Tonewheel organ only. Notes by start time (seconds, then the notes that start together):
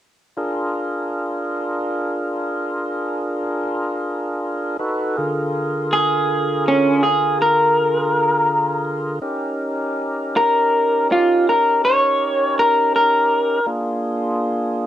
0.37 D4 F4 G#4 A#4
4.79 D#4 F#4 A4 B4
5.17 D3 F4 G#4 A#4
9.22 C#4 D#4 G4 A#4
13.66 A#3 D4 F4 G#4